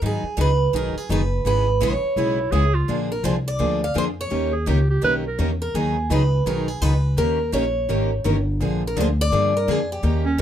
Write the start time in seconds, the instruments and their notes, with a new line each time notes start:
0.02 upright bass G#2, steel-string acoustic guitar D#3 F#3 B3 D#4 G#4
0.06 steel-string acoustic guitar G#4
0.23 muted upright bass stroke
0.37 upright bass C#2, steel-string acoustic guitar D#3 F#3 B3 D#4 G#4
0.41 steel-string acoustic guitar B4
0.73 upright bass B1, steel-string acoustic guitar D#3 F#3 B3 D#4 G#4 A#4
0.95 steel-string acoustic guitar G#4, muted upright bass stroke
1.09 upright bass F#1, steel-string acoustic guitar D#3 F#3 B3 D#4 G#4 B4
1.45 upright bass G#1, steel-string acoustic guitar C#3 G#3 B3 E4 G#4 B4
1.80 upright bass A#1, steel-string acoustic guitar C#3 G#3 B3 E4 G#4 C#5
2.16 upright bass B1, steel-string acoustic guitar C#3 G#3 B3 E4 G#4, clarinet E4
2.51 upright bass C#2, steel-string acoustic guitar C#3 G#3 B3 E4 G#4, clarinet G#4
2.74 clarinet F4
2.88 upright bass A#1, steel-string acoustic guitar D3 F3 A#3 D4 G#4
3.12 steel-string acoustic guitar A#4
3.24 upright bass C2, steel-string acoustic guitar D3 F3 A#3 D4 G#4 C5
3.48 steel-string acoustic guitar D5
3.59 upright bass D2, steel-string acoustic guitar D3 F3 A#3 D4 G#4
3.84 steel-string acoustic guitar F5
3.94 upright bass F2, steel-string acoustic guitar D3 F3 A#3 D4 G#4 C5
4.21 steel-string acoustic guitar C#5
4.30 upright bass D#2, steel-string acoustic guitar D#3 A#3 C#4 G4 A#4
4.52 clarinet G#4
4.66 upright bass C#2, steel-string acoustic guitar D#3 A#3 C#4 G4 A#4, clarinet G4
4.90 clarinet G4
5.01 upright bass B1, steel-string acoustic guitar D#3 A#3 C#4 G4 A#4, clarinet B4
5.28 clarinet A#4
5.39 upright bass E2, steel-string acoustic guitar D#3 A#3 C#4 G4 A#4
5.62 steel-string acoustic guitar A#4
5.74 upright bass D#2, steel-string acoustic guitar D#3 F#3 B3 D#4 G#4
6.10 upright bass C#2, steel-string acoustic guitar D#3 F#3 B3 D#4 G#4 B4
6.46 upright bass B1, steel-string acoustic guitar D#3 F#3 B3 D#4 G#4 A#4
6.68 steel-string acoustic guitar G#4
6.81 upright bass C#2, steel-string acoustic guitar D#3 F#3 B3 D#4 G#4 B4
7.17 upright bass D#2, steel-string acoustic guitar D#3 A#3 C#4 G4 A#4
7.52 upright bass A#1, steel-string acoustic guitar D#3 A#3 C#4 G4 A#4 C#5
7.89 upright bass G#1, steel-string acoustic guitar D#3 A#3 C#4 G4 A#4
8.24 upright bass G1, steel-string acoustic guitar D#3 A#3 C#4 G4 A#4
8.60 upright bass A#1, steel-string acoustic guitar D3 F3 A#3 D4 G#4
8.87 steel-string acoustic guitar A#4
8.96 upright bass D2, steel-string acoustic guitar D3 F3 A#3 D4 G#4
9.00 steel-string acoustic guitar C5
9.21 steel-string acoustic guitar D5
9.32 upright bass G2, steel-string acoustic guitar D3 F3 A#3 D4 G#4
9.57 steel-string acoustic guitar A#4
9.67 upright bass F2, steel-string acoustic guitar D3 F3 A#3 D4 G#4
9.92 steel-string acoustic guitar G4
10.03 upright bass D#2, steel-string acoustic guitar D#3 A#3 C#4 G4 A#4
10.25 clarinet C#4
10.38 steel-string acoustic guitar D#3 A#3